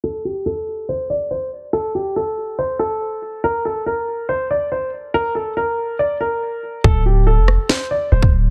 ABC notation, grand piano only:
X:1
M:4/4
L:1/8
Q:1/4=141
K:Dm
V:1 name="Grand piano"
A G A2 c d c z | A G A2 c A3 | B A B2 c d c z | B A B2 d B3 |
A G A2 c d c z |]